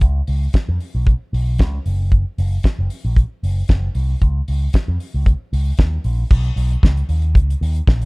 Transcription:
0.01 C#2, kick, closed hi-hat
0.27 C#2, open hi-hat
0.53 kick, snare, closed hi-hat
0.69 F2
0.80 open hi-hat
0.95 B1
1.07 kick, closed hi-hat
1.33 B1, open hi-hat
1.58 C#2, kick, snare, closed hi-hat
1.86 F#1, open hi-hat
2.12 kick, closed hi-hat
2.38 F#1, open hi-hat
2.63 kick, snare, closed hi-hat
2.79 F#1
2.90 open hi-hat
3.05 A#1
3.16 kick, closed hi-hat
3.43 F#1, open hi-hat
3.68 F#1, kick, snare, closed hi-hat
3.95 C2, open hi-hat
4.22 C#2, kick, closed hi-hat
4.48 C#2, open hi-hat
4.73 kick, snare, closed hi-hat
4.88 F2
5.00 open hi-hat
5.14 C#2
5.26 kick, closed hi-hat
5.53 C#2, open hi-hat
5.77 D#2, kick, snare, closed hi-hat
6.04 A#1, open hi-hat
6.31 B1, kick, crash
6.44 closed hi-hat
6.56 B1, open hi-hat
6.71 closed hi-hat
6.83 C#2, kick, snare
6.97 closed hi-hat
7.09 D#2, open hi-hat
7.22 closed hi-hat
7.35 C#2, kick, closed hi-hat
7.50 closed hi-hat
7.61 D#2, open hi-hat
7.76 closed hi-hat
7.87 A#1, kick, snare
8.02 closed hi-hat

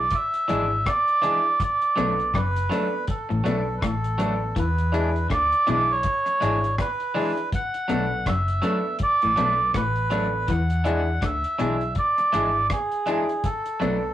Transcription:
Already playing: D5
0.10 kick, closed hi-hat
0.15 E5
0.34 closed hi-hat
0.48 G#1 G#2 E3 G#3 D4 E4 G#4, closed hi-hat
0.86 D5, kick, cross-stick, closed hi-hat
1.08 closed hi-hat
1.22 E3 G#3 D4 E4 G#4, closed hi-hat
1.60 D5, kick, closed hi-hat
1.82 closed hi-hat
1.96 B1 B2 F#3 A3 B3 D4 A4, closed hi-hat
2.20 closed hi-hat
2.34 F#1 F#2 B4, kick, cross-stick, closed hi-hat
2.56 closed hi-hat
2.70 F#3 A3 B3 D4 A4, closed hi-hat
3.07 A4, kick, closed hi-hat
3.29 A1 A2, muted clean electric guitar stroke, closed hi-hat
3.44 B1 B2 F#3 A3 B3 D4 A4, closed hi-hat
3.78 B4
3.82 A1 A2 A4, kick, cross-stick, closed hi-hat
4.04 closed hi-hat
4.18 F#3 A3 B3 D4 A4, closed hi-hat
4.56 E2 E3 B4, kick, closed hi-hat
4.78 closed hi-hat
4.92 E3 G#3 D4 E4 G#4, closed hi-hat
5.16 closed hi-hat
5.30 D2 D3 D5, kick, cross-stick, closed hi-hat
5.52 closed hi-hat
5.67 B1 B2 E3 G#3 D4 E4 G#4 D5, closed hi-hat
5.91 C#5
6.03 kick, closed hi-hat
6.26 muted clean electric guitar stroke, closed hi-hat
6.41 G#1 G#2 E3 G#3 D4 E4 G#4, closed hi-hat
6.64 closed hi-hat
6.78 B4, kick, cross-stick, closed hi-hat
7.00 closed hi-hat
7.15 E3 G#3 D4 E4 G#4, open hi-hat
7.37 closed hi-hat
7.53 F#5, kick, closed hi-hat
7.74 closed hi-hat
7.88 B1 B2 F#3 A3 B3 D4 A4, closed hi-hat
8.26 F#1 F#2 E5, kick, cross-stick, closed hi-hat
8.48 closed hi-hat
8.62 F#3 A3 B3 D4 A4, closed hi-hat
8.99 D5, kick, closed hi-hat
9.22 A1 A2, closed hi-hat
9.36 B1 B2 F#3 A3 B3 D4 A4, closed hi-hat
9.74 A1 A2 B4, kick, cross-stick, closed hi-hat
9.96 closed hi-hat
10.10 F#3 A3 B3 D4 A4, closed hi-hat
10.48 E2 E3 F#5, kick, closed hi-hat
10.70 closed hi-hat
10.84 E3 G#3 D4 E4 G#4, closed hi-hat
11.22 D2 D3 E5, kick, cross-stick, closed hi-hat
11.44 closed hi-hat
11.58 B1 B2 E3 G#3 D4 E4 G#4, closed hi-hat
11.81 closed hi-hat
11.95 D5, kick, closed hi-hat
12.18 muted clean electric guitar stroke, closed hi-hat
12.33 G#1 G#2 E3 G#3 D4 E4 G#4, closed hi-hat
12.70 G#4, kick, cross-stick, closed hi-hat
12.92 closed hi-hat
13.06 E3 G#3 D4 E4 G#4, closed hi-hat
13.29 closed hi-hat
13.44 A4, kick, closed hi-hat
13.66 closed hi-hat
13.80 B1 B2 F#3 A3 B3 D4 A4, closed hi-hat

